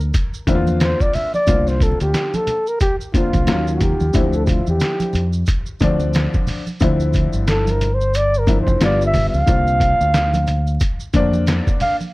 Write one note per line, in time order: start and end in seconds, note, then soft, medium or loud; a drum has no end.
0.00 0.11 D2 medium
0.00 maracas soft
0.14 kick medium
0.14 closed hi-hat loud
0.14 maracas medium
0.34 maracas soft
0.47 0.93 E2 medium
0.47 1.27 D3 medium
0.47 1.27 A#3 medium
0.47 1.27 C4 medium
0.47 0.56 E4 medium
0.47 kick medium
0.47 closed hi-hat medium
0.47 maracas soft
0.55 1.31 F4 medium
0.67 high conga medium
0.67 maracas soft
0.80 1.03 C5 medium
0.80 snare loud
0.80 closed hi-hat medium
0.80 maracas medium
1.00 1.16 D5 medium
1.00 kick medium
1.00 maracas soft
1.13 1.34 E5 medium
1.13 open hi-hat medium
1.13 low conga medium
1.13 maracas soft
1.34 1.70 D5 loud
1.34 high conga soft
1.34 maracas soft
1.47 1.93 C2 loud
1.47 2.51 D3 medium
1.47 2.51 A#3 medium
1.47 2.52 C4 medium
1.47 2.52 F4 medium
1.47 kick loud
1.47 closed hi-hat medium
1.47 maracas medium
1.67 1.84 C5 medium
1.67 snare soft
1.67 maracas soft
1.80 2.01 A4 medium
1.80 kick medium
1.80 closed hi-hat medium
1.80 maracas soft
2.00 2.13 D2 loud
2.00 2.37 G4 medium
2.00 closed hi-hat medium
2.00 maracas soft
2.14 snare loud
2.14 closed hi-hat medium
2.14 maracas medium
2.34 2.70 A4 medium
2.34 closed hi-hat soft
2.34 high conga medium
2.34 maracas soft
2.47 closed hi-hat medium
2.47 low conga medium
2.47 maracas soft
2.67 2.80 A#4 medium
2.67 maracas soft
2.80 2.96 G4 medium
2.80 kick medium
2.80 closed hi-hat loud
2.80 maracas medium
3.01 maracas soft
3.14 3.48 D3 medium
3.14 3.48 A#3 medium
3.14 3.48 C4 medium
3.14 3.71 F4 medium
3.14 3.47 F4 medium
3.14 kick medium
3.14 closed hi-hat medium
3.14 maracas soft
3.33 3.48 C2 medium
3.33 kick medium
3.33 closed hi-hat soft
3.33 high conga medium
3.33 maracas soft
3.47 3.93 D#2 loud
3.47 4.03 D#3 medium
3.47 4.03 F#3 medium
3.47 4.04 C#4 medium
3.47 4.04 F4 medium
3.47 snare loud
3.47 closed hi-hat medium
3.47 maracas medium
3.67 maracas soft
3.75 3.83 F#4 medium
3.81 4.37 G4 medium
3.81 kick medium
3.81 closed hi-hat medium
3.81 low conga medium
3.81 maracas soft
4.00 4.13 D#2 medium
4.00 high conga soft
4.00 maracas soft
4.13 4.60 D2 loud
4.13 5.18 D3 medium
4.13 4.22 E3 medium
4.13 5.18 C4 medium
4.13 5.19 E4 medium
4.13 kick loud
4.13 closed hi-hat medium
4.13 maracas medium
4.20 5.21 F3 medium
4.33 4.45 A4 medium
4.33 maracas soft
4.46 4.68 F4 medium
4.46 4.51 G4 medium
4.46 kick medium
4.46 closed hi-hat medium
4.46 maracas soft
4.67 4.79 E2 medium
4.67 5.31 G4 medium
4.67 maracas soft
4.80 snare loud
4.80 closed hi-hat medium
4.80 maracas medium
5.00 closed hi-hat soft
5.00 high conga medium
5.00 maracas soft
5.13 5.43 F2 medium
5.13 closed hi-hat medium
5.13 low conga medium
5.13 maracas soft
5.33 maracas soft
5.46 kick medium
5.46 closed hi-hat loud
5.46 maracas medium
5.66 maracas soft
5.80 6.26 D2 medium
5.80 6.60 D3 medium
5.80 6.60 F3 medium
5.80 6.61 C4 medium
5.80 6.61 D4 loud
5.80 kick medium
5.80 closed hi-hat medium
5.80 maracas soft
6.00 high conga medium
6.00 maracas soft
6.14 snare loud
6.14 closed hi-hat medium
6.14 maracas medium
6.34 kick medium
6.34 maracas soft
6.47 open hi-hat medium
6.47 low conga medium
6.47 maracas soft
6.67 high conga soft
6.67 maracas soft
6.80 7.27 D2 loud
6.80 7.85 D3 medium
6.80 7.85 F3 medium
6.80 7.85 C4 medium
6.80 7.85 E4 medium
6.80 kick loud
6.80 closed hi-hat medium
6.80 maracas medium
7.00 maracas soft
7.13 kick medium
7.13 closed hi-hat medium
7.13 maracas soft
7.33 8.63 G1 medium
7.33 maracas medium
7.47 7.72 A4 medium
7.47 snare loud
7.47 closed hi-hat medium
7.47 maracas medium
7.67 7.96 A#4 medium
7.67 closed hi-hat soft
7.67 high conga medium
7.67 maracas soft
7.81 closed hi-hat medium
7.81 low conga medium
7.81 maracas soft
7.94 8.18 C5 medium
8.01 maracas soft
8.14 8.41 D5 loud
8.14 closed hi-hat loud
8.14 maracas medium
8.34 maracas soft
8.39 8.60 A#4 medium
8.47 8.79 D3 medium
8.47 8.81 F3 medium
8.47 8.81 C4 medium
8.47 8.81 E4 medium
8.47 kick medium
8.47 closed hi-hat medium
8.47 maracas soft
8.61 8.81 C5 medium
8.67 8.79 F1 medium
8.67 kick medium
8.67 high conga medium
8.67 maracas soft
8.80 9.26 G1 loud
8.80 9.36 D3 medium
8.80 9.37 G3 medium
8.80 9.37 B3 medium
8.80 9.37 F4 medium
8.80 9.03 D5 loud
8.80 snare loud
8.80 closed hi-hat medium
8.80 maracas medium
9.01 maracas soft
9.06 9.26 E5 loud
9.14 kick medium
9.14 open hi-hat medium
9.14 low conga medium
9.14 maracas soft
9.29 10.90 F5 loud
9.34 9.46 C#2 medium
9.34 high conga soft
9.34 maracas soft
9.46 9.93 C2 loud
9.46 10.51 D3 medium
9.46 10.51 A#3 medium
9.46 10.51 C4 medium
9.46 10.52 F4 medium
9.46 kick loud
9.46 closed hi-hat medium
9.46 maracas medium
9.67 maracas soft
9.80 kick medium
9.80 closed hi-hat medium
9.80 maracas soft
10.01 10.77 D2 medium
10.01 maracas soft
10.14 snare loud
10.14 closed hi-hat medium
10.14 maracas medium
10.34 closed hi-hat soft
10.34 high conga medium
10.34 maracas soft
10.47 closed hi-hat medium
10.47 low conga medium
10.47 maracas soft
10.67 maracas soft
10.80 kick medium
10.80 closed hi-hat loud
10.80 maracas medium
11.00 maracas soft
11.13 11.59 F2 medium
11.13 11.93 D3 medium
11.13 11.94 A#3 medium
11.13 11.94 C4 medium
11.13 11.94 D4 loud
11.13 kick medium
11.13 closed hi-hat medium
11.13 maracas soft
11.34 high conga medium
11.34 maracas soft
11.47 snare loud
11.47 closed hi-hat medium
11.47 maracas medium
11.67 kick medium
11.67 maracas soft
11.80 11.97 F5 loud
11.80 open hi-hat medium
11.80 low conga medium
11.80 maracas soft
12.01 high conga soft
12.01 maracas soft